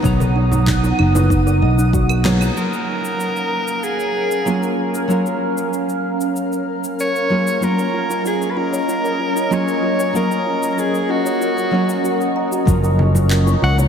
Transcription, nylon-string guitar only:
0, 0, Header, 1, 2, 480
1, 0, Start_track
1, 0, Key_signature, 6, "major"
1, 0, Tempo, 631579
1, 30, Time_signature, 4, 2, 24, 8
1, 10550, End_track
2, 0, Start_track
2, 0, Title_t, "Nylon-string guitar"
2, 0, Program_c, 0, 24
2, 18, Note_on_c, 0, 54, 102
2, 30, Note_on_c, 0, 59, 84
2, 36, Note_on_c, 0, 63, 87
2, 41, Note_on_c, 0, 82, 107
2, 1676, Note_off_c, 0, 54, 0
2, 1682, Note_off_c, 0, 59, 0
2, 1685, Note_off_c, 0, 63, 0
2, 1688, Note_off_c, 0, 82, 0
2, 1704, Note_on_c, 0, 54, 96
2, 1706, Note_on_c, 0, 58, 84
2, 1712, Note_on_c, 0, 59, 82
2, 1713, Note_on_c, 0, 63, 85
2, 1717, Note_on_c, 0, 68, 109
2, 1919, Note_off_c, 0, 54, 0
2, 1921, Note_off_c, 0, 58, 0
2, 1922, Note_off_c, 0, 59, 0
2, 1924, Note_off_c, 0, 63, 0
2, 1925, Note_off_c, 0, 68, 0
2, 1938, Note_on_c, 0, 54, 64
2, 1946, Note_on_c, 0, 58, 64
2, 1950, Note_on_c, 0, 61, 59
2, 1957, Note_on_c, 0, 65, 60
2, 1962, Note_on_c, 0, 70, 70
2, 3356, Note_off_c, 0, 54, 0
2, 3360, Note_off_c, 0, 58, 0
2, 3362, Note_off_c, 0, 61, 0
2, 3366, Note_off_c, 0, 65, 0
2, 3368, Note_off_c, 0, 70, 0
2, 3383, Note_on_c, 0, 54, 81
2, 3387, Note_on_c, 0, 58, 79
2, 3390, Note_on_c, 0, 61, 77
2, 3395, Note_on_c, 0, 65, 77
2, 3395, Note_on_c, 0, 68, 92
2, 3839, Note_off_c, 0, 54, 0
2, 3840, Note_off_c, 0, 58, 0
2, 3842, Note_off_c, 0, 61, 0
2, 3844, Note_off_c, 0, 65, 0
2, 3844, Note_off_c, 0, 68, 0
2, 3859, Note_on_c, 0, 54, 83
2, 3865, Note_on_c, 0, 58, 77
2, 3871, Note_on_c, 0, 61, 74
2, 3875, Note_on_c, 0, 65, 74
2, 3883, Note_on_c, 0, 70, 91
2, 5517, Note_off_c, 0, 54, 0
2, 5519, Note_off_c, 0, 58, 0
2, 5523, Note_off_c, 0, 61, 0
2, 5525, Note_off_c, 0, 65, 0
2, 5528, Note_off_c, 0, 70, 0
2, 5544, Note_on_c, 0, 54, 78
2, 5549, Note_on_c, 0, 61, 71
2, 5550, Note_on_c, 0, 58, 74
2, 5554, Note_on_c, 0, 65, 74
2, 5559, Note_on_c, 0, 68, 91
2, 5760, Note_off_c, 0, 54, 0
2, 5761, Note_off_c, 0, 58, 0
2, 5762, Note_off_c, 0, 61, 0
2, 5764, Note_off_c, 0, 65, 0
2, 5766, Note_off_c, 0, 68, 0
2, 5777, Note_on_c, 0, 54, 71
2, 5784, Note_on_c, 0, 58, 64
2, 5791, Note_on_c, 0, 61, 62
2, 5794, Note_on_c, 0, 65, 65
2, 5802, Note_on_c, 0, 70, 76
2, 7196, Note_off_c, 0, 54, 0
2, 7199, Note_off_c, 0, 58, 0
2, 7202, Note_off_c, 0, 61, 0
2, 7204, Note_off_c, 0, 65, 0
2, 7208, Note_off_c, 0, 70, 0
2, 7221, Note_on_c, 0, 54, 88
2, 7226, Note_on_c, 0, 58, 82
2, 7226, Note_on_c, 0, 61, 77
2, 7230, Note_on_c, 0, 65, 81
2, 7234, Note_on_c, 0, 68, 97
2, 7678, Note_off_c, 0, 54, 0
2, 7679, Note_off_c, 0, 58, 0
2, 7681, Note_off_c, 0, 61, 0
2, 7682, Note_off_c, 0, 65, 0
2, 7684, Note_off_c, 0, 68, 0
2, 7697, Note_on_c, 0, 54, 91
2, 7704, Note_on_c, 0, 58, 78
2, 7709, Note_on_c, 0, 61, 77
2, 7715, Note_on_c, 0, 77, 77
2, 7722, Note_on_c, 0, 70, 96
2, 8880, Note_off_c, 0, 54, 0
2, 8884, Note_off_c, 0, 58, 0
2, 8886, Note_off_c, 0, 61, 0
2, 8890, Note_off_c, 0, 77, 0
2, 8893, Note_off_c, 0, 70, 0
2, 8899, Note_on_c, 0, 54, 85
2, 8906, Note_on_c, 0, 58, 79
2, 8910, Note_on_c, 0, 61, 78
2, 8923, Note_on_c, 0, 70, 91
2, 9597, Note_off_c, 0, 54, 0
2, 9600, Note_off_c, 0, 58, 0
2, 9602, Note_off_c, 0, 61, 0
2, 9609, Note_off_c, 0, 70, 0
2, 9616, Note_on_c, 0, 54, 76
2, 9622, Note_on_c, 0, 58, 70
2, 9629, Note_on_c, 0, 61, 68
2, 9635, Note_on_c, 0, 53, 69
2, 9640, Note_on_c, 0, 70, 83
2, 10550, Note_off_c, 0, 53, 0
2, 10550, Note_off_c, 0, 54, 0
2, 10550, Note_off_c, 0, 58, 0
2, 10550, Note_off_c, 0, 61, 0
2, 10550, Note_off_c, 0, 70, 0
2, 10550, End_track
0, 0, End_of_file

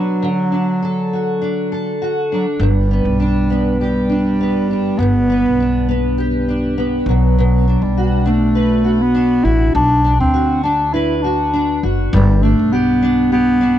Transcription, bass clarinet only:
0, 0, Header, 1, 2, 480
1, 0, Start_track
1, 0, Key_signature, 1, "major"
1, 0, Tempo, 595238
1, 179, Time_signature, 4, 2, 24, 8
1, 11118, End_track
2, 0, Start_track
2, 0, Title_t, "Bass clarinet"
2, 0, Program_c, 0, 71
2, 0, Note_on_c, 0, 54, 86
2, 1600, Note_off_c, 0, 54, 0
2, 1882, Note_on_c, 0, 54, 66
2, 1986, Note_off_c, 0, 54, 0
2, 2116, Note_on_c, 0, 55, 86
2, 3038, Note_off_c, 0, 55, 0
2, 3061, Note_on_c, 0, 55, 85
2, 4018, Note_on_c, 0, 59, 96
2, 4030, Note_off_c, 0, 55, 0
2, 4980, Note_off_c, 0, 59, 0
2, 5708, Note_on_c, 0, 54, 83
2, 6315, Note_on_c, 0, 55, 84
2, 6327, Note_off_c, 0, 54, 0
2, 6671, Note_on_c, 0, 57, 88
2, 6683, Note_off_c, 0, 55, 0
2, 7269, Note_on_c, 0, 59, 96
2, 7281, Note_off_c, 0, 57, 0
2, 7615, Note_on_c, 0, 64, 99
2, 7627, Note_off_c, 0, 59, 0
2, 7858, Note_off_c, 0, 64, 0
2, 7865, Note_on_c, 0, 62, 107
2, 8209, Note_off_c, 0, 62, 0
2, 8226, Note_on_c, 0, 60, 91
2, 8553, Note_off_c, 0, 60, 0
2, 8575, Note_on_c, 0, 62, 90
2, 8817, Note_on_c, 0, 64, 92
2, 8829, Note_off_c, 0, 62, 0
2, 9002, Note_off_c, 0, 64, 0
2, 9002, Note_on_c, 0, 64, 66
2, 9055, Note_on_c, 0, 62, 82
2, 9067, Note_off_c, 0, 64, 0
2, 9538, Note_off_c, 0, 62, 0
2, 9792, Note_on_c, 0, 55, 98
2, 10024, Note_on_c, 0, 57, 91
2, 10036, Note_off_c, 0, 55, 0
2, 10261, Note_on_c, 0, 59, 102
2, 10273, Note_off_c, 0, 57, 0
2, 10736, Note_off_c, 0, 59, 0
2, 10741, Note_on_c, 0, 59, 103
2, 11118, Note_off_c, 0, 59, 0
2, 11118, End_track
0, 0, End_of_file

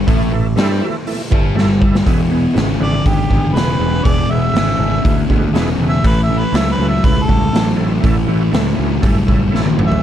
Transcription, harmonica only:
0, 0, Header, 1, 2, 480
1, 0, Start_track
1, 0, Tempo, 497512
1, 68, Time_signature, 4, 2, 24, 8
1, 9675, End_track
2, 0, Start_track
2, 0, Title_t, "Harmonica"
2, 0, Program_c, 0, 22
2, 2727, Note_on_c, 0, 74, 91
2, 2951, Note_off_c, 0, 74, 0
2, 2958, Note_on_c, 0, 67, 87
2, 3424, Note_on_c, 0, 71, 89
2, 3439, Note_off_c, 0, 67, 0
2, 3896, Note_on_c, 0, 74, 89
2, 3911, Note_off_c, 0, 71, 0
2, 4151, Note_on_c, 0, 76, 101
2, 4165, Note_off_c, 0, 74, 0
2, 5082, Note_off_c, 0, 76, 0
2, 5689, Note_on_c, 0, 76, 98
2, 5835, Note_off_c, 0, 76, 0
2, 5855, Note_on_c, 0, 71, 94
2, 5998, Note_off_c, 0, 71, 0
2, 6015, Note_on_c, 0, 76, 88
2, 6162, Note_on_c, 0, 71, 79
2, 6176, Note_off_c, 0, 76, 0
2, 6329, Note_on_c, 0, 76, 89
2, 6343, Note_off_c, 0, 71, 0
2, 6475, Note_off_c, 0, 76, 0
2, 6480, Note_on_c, 0, 71, 84
2, 6639, Note_on_c, 0, 76, 84
2, 6654, Note_off_c, 0, 71, 0
2, 6798, Note_on_c, 0, 71, 96
2, 6812, Note_off_c, 0, 76, 0
2, 6970, Note_on_c, 0, 69, 101
2, 6985, Note_off_c, 0, 71, 0
2, 7427, Note_off_c, 0, 69, 0
2, 9522, Note_on_c, 0, 76, 88
2, 9675, Note_off_c, 0, 76, 0
2, 9675, End_track
0, 0, End_of_file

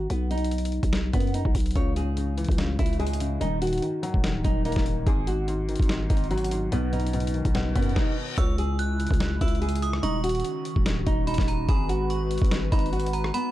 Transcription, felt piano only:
0, 0, Header, 1, 2, 480
1, 0, Start_track
1, 0, Tempo, 413793
1, 116, Time_signature, 4, 2, 24, 8
1, 15676, End_track
2, 0, Start_track
2, 0, Title_t, "Felt piano"
2, 0, Program_c, 0, 0
2, 2043, Note_on_c, 0, 49, 94
2, 2255, Control_c, 0, 64, 127
2, 2256, Note_off_c, 0, 49, 0
2, 2274, Note_on_c, 0, 49, 76
2, 2496, Note_off_c, 0, 49, 0
2, 2514, Note_on_c, 0, 49, 84
2, 2756, Note_on_c, 0, 52, 81
2, 2982, Note_off_c, 0, 49, 0
2, 2999, Note_on_c, 0, 49, 85
2, 3477, Note_on_c, 0, 56, 82
2, 3699, Note_off_c, 0, 49, 0
2, 3716, Note_on_c, 0, 49, 82
2, 3955, Note_on_c, 0, 51, 98
2, 3956, Note_off_c, 0, 49, 0
2, 3956, Note_off_c, 0, 52, 0
2, 3957, Note_off_c, 0, 56, 0
2, 3972, Control_c, 0, 64, 0
2, 4164, Control_c, 0, 64, 127
2, 4177, Note_off_c, 0, 51, 0
2, 4194, Note_on_c, 0, 51, 78
2, 4415, Note_off_c, 0, 51, 0
2, 4432, Note_on_c, 0, 51, 80
2, 4672, Note_on_c, 0, 54, 83
2, 4894, Note_off_c, 0, 51, 0
2, 4912, Note_on_c, 0, 51, 86
2, 5399, Note_on_c, 0, 58, 85
2, 5615, Note_off_c, 0, 51, 0
2, 5632, Note_on_c, 0, 51, 77
2, 5874, Note_off_c, 0, 51, 0
2, 5874, Note_off_c, 0, 54, 0
2, 5877, Note_on_c, 0, 44, 99
2, 5878, Note_off_c, 0, 58, 0
2, 5892, Control_c, 0, 64, 0
2, 6074, Control_c, 0, 64, 127
2, 6099, Note_off_c, 0, 44, 0
2, 6116, Note_on_c, 0, 44, 75
2, 6337, Note_off_c, 0, 44, 0
2, 6354, Note_on_c, 0, 44, 83
2, 6595, Note_on_c, 0, 51, 82
2, 6815, Note_off_c, 0, 44, 0
2, 6832, Note_on_c, 0, 44, 96
2, 7319, Note_on_c, 0, 54, 82
2, 7536, Note_off_c, 0, 44, 0
2, 7553, Note_on_c, 0, 44, 82
2, 7795, Note_off_c, 0, 44, 0
2, 7796, Note_off_c, 0, 51, 0
2, 7798, Note_off_c, 0, 54, 0
2, 7799, Note_on_c, 0, 47, 89
2, 7810, Control_c, 0, 64, 0
2, 8008, Control_c, 0, 64, 127
2, 8017, Note_off_c, 0, 47, 0
2, 8034, Note_on_c, 0, 47, 77
2, 8259, Note_off_c, 0, 47, 0
2, 8276, Note_on_c, 0, 47, 79
2, 8518, Note_on_c, 0, 51, 76
2, 8735, Note_off_c, 0, 47, 0
2, 8753, Note_on_c, 0, 47, 92
2, 9251, Control_c, 0, 64, 0
2, 9714, Note_off_c, 0, 47, 0
2, 9717, Note_off_c, 0, 51, 0
2, 15676, End_track
0, 0, End_of_file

